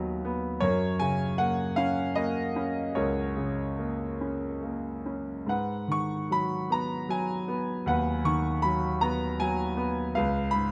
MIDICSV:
0, 0, Header, 1, 2, 480
1, 0, Start_track
1, 0, Tempo, 779221
1, 387, Time_signature, 6, 3, 24, 8
1, 1833, Tempo, 833333
1, 3753, Tempo, 796813
1, 4233, Tempo, 763359
1, 6502, End_track
2, 0, Start_track
2, 0, Title_t, "Grand piano"
2, 0, Program_c, 0, 0
2, 0, Control_c, 0, 64, 127
2, 0, Note_on_c, 0, 39, 55
2, 0, Note_on_c, 0, 51, 43
2, 0, Note_on_c, 0, 54, 49
2, 0, Note_on_c, 0, 59, 54
2, 0, Note_on_c, 0, 71, 46
2, 0, Note_on_c, 0, 75, 61
2, 125, Note_off_c, 0, 51, 0
2, 125, Note_off_c, 0, 71, 0
2, 127, Note_off_c, 0, 75, 0
2, 143, Note_off_c, 0, 59, 0
2, 152, Note_on_c, 0, 59, 54
2, 360, Note_off_c, 0, 39, 0
2, 369, Note_off_c, 0, 54, 0
2, 373, Note_on_c, 0, 73, 81
2, 381, Note_off_c, 0, 59, 0
2, 381, Note_on_c, 0, 42, 67
2, 385, Note_on_c, 0, 70, 60
2, 394, Control_c, 0, 64, 0
2, 494, Control_c, 0, 64, 127
2, 613, Note_on_c, 0, 80, 87
2, 619, Note_on_c, 0, 49, 51
2, 625, Note_off_c, 0, 73, 0
2, 851, Note_on_c, 0, 78, 90
2, 857, Note_on_c, 0, 58, 49
2, 865, Note_off_c, 0, 80, 0
2, 1076, Note_off_c, 0, 70, 0
2, 1085, Note_on_c, 0, 77, 89
2, 1093, Note_on_c, 0, 61, 62
2, 1103, Note_off_c, 0, 78, 0
2, 1322, Note_off_c, 0, 58, 0
2, 1327, Note_on_c, 0, 75, 87
2, 1331, Note_on_c, 0, 58, 56
2, 1341, Note_off_c, 0, 77, 0
2, 1558, Note_off_c, 0, 49, 0
2, 1568, Note_off_c, 0, 61, 0
2, 1577, Note_on_c, 0, 61, 55
2, 1801, Note_off_c, 0, 75, 0
2, 1805, Note_off_c, 0, 42, 0
2, 1818, Note_on_c, 0, 73, 70
2, 1823, Note_on_c, 0, 37, 60
2, 1824, Note_on_c, 0, 70, 50
2, 2059, Note_on_c, 0, 49, 42
2, 2276, Note_off_c, 0, 58, 0
2, 2303, Note_on_c, 0, 58, 42
2, 2517, Note_off_c, 0, 61, 0
2, 2543, Note_on_c, 0, 61, 45
2, 2778, Note_off_c, 0, 58, 0
2, 2786, Note_on_c, 0, 58, 41
2, 3000, Note_off_c, 0, 73, 0
2, 3002, Note_off_c, 0, 49, 0
2, 3002, Note_off_c, 0, 70, 0
2, 3024, Note_off_c, 0, 61, 0
2, 3033, Note_on_c, 0, 61, 43
2, 3246, Note_off_c, 0, 37, 0
2, 3259, Note_off_c, 0, 58, 0
2, 3266, Note_on_c, 0, 44, 54
2, 3268, Note_off_c, 0, 61, 0
2, 3277, Note_on_c, 0, 71, 47
2, 3279, Control_c, 0, 64, 0
2, 3283, Note_on_c, 0, 78, 68
2, 3392, Control_c, 0, 64, 127
2, 3507, Note_on_c, 0, 51, 40
2, 3526, Note_on_c, 0, 85, 76
2, 3527, Note_off_c, 0, 78, 0
2, 3741, Note_off_c, 0, 85, 0
2, 3748, Note_on_c, 0, 54, 41
2, 3761, Note_on_c, 0, 83, 83
2, 3972, Note_off_c, 0, 71, 0
2, 3988, Note_on_c, 0, 59, 49
2, 4001, Note_on_c, 0, 82, 77
2, 4006, Note_off_c, 0, 83, 0
2, 4212, Note_off_c, 0, 54, 0
2, 4221, Note_on_c, 0, 54, 47
2, 4232, Note_on_c, 0, 80, 77
2, 4243, Note_off_c, 0, 82, 0
2, 4447, Note_off_c, 0, 51, 0
2, 4459, Note_off_c, 0, 59, 0
2, 4468, Note_on_c, 0, 59, 51
2, 4688, Note_off_c, 0, 44, 0
2, 4708, Note_on_c, 0, 39, 61
2, 4717, Note_on_c, 0, 78, 79
2, 4719, Note_on_c, 0, 71, 57
2, 4732, Note_off_c, 0, 80, 0
2, 4950, Note_on_c, 0, 51, 45
2, 4954, Note_on_c, 0, 85, 82
2, 4963, Note_off_c, 0, 78, 0
2, 5166, Note_off_c, 0, 54, 0
2, 5179, Note_off_c, 0, 85, 0
2, 5187, Note_on_c, 0, 83, 84
2, 5198, Note_on_c, 0, 54, 45
2, 5409, Note_off_c, 0, 59, 0
2, 5415, Note_off_c, 0, 71, 0
2, 5416, Note_off_c, 0, 83, 0
2, 5432, Note_on_c, 0, 82, 82
2, 5434, Note_on_c, 0, 59, 56
2, 5659, Note_off_c, 0, 82, 0
2, 5668, Note_off_c, 0, 54, 0
2, 5674, Note_on_c, 0, 80, 87
2, 5677, Note_on_c, 0, 54, 54
2, 5891, Note_off_c, 0, 51, 0
2, 5899, Note_off_c, 0, 59, 0
2, 5908, Note_on_c, 0, 59, 59
2, 6126, Note_off_c, 0, 39, 0
2, 6140, Note_off_c, 0, 54, 0
2, 6143, Note_off_c, 0, 59, 0
2, 6148, Note_on_c, 0, 77, 83
2, 6153, Note_on_c, 0, 71, 60
2, 6157, Note_on_c, 0, 37, 69
2, 6165, Control_c, 0, 64, 0
2, 6168, Note_off_c, 0, 80, 0
2, 6289, Control_c, 0, 64, 127
2, 6372, Note_off_c, 0, 77, 0
2, 6373, Note_on_c, 0, 83, 81
2, 6398, Note_on_c, 0, 44, 48
2, 6502, Note_off_c, 0, 37, 0
2, 6502, Note_off_c, 0, 44, 0
2, 6502, Note_off_c, 0, 71, 0
2, 6502, Note_off_c, 0, 83, 0
2, 6502, End_track
0, 0, End_of_file